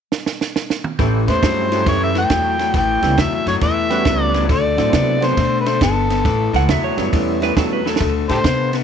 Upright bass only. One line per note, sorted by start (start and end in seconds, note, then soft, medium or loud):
0.99 1.27 A1 medium
1.28 1.42 E2 medium
1.43 1.85 G2 medium
1.86 2.29 F#2 medium
2.30 2.73 E2 medium
2.74 3.02 A1 medium
3.02 3.17 C#2 medium
3.18 3.46 E2 medium
3.46 3.61 F#2 medium
3.62 4.04 E2 medium
4.06 4.48 C#2 medium
4.49 4.77 D2 medium
4.77 4.92 A2 medium
4.93 5.36 C3 medium
5.38 5.80 B2 medium
5.81 6.23 G1 medium
6.25 6.53 A1 medium
6.53 6.68 C#2 medium
6.69 6.96 E2 medium
6.97 7.12 F#2 medium
7.13 7.55 E2 medium
7.57 7.99 E2 medium
8.01 8.28 D2 medium
8.30 8.44 A2 medium
8.44 8.84 C3 medium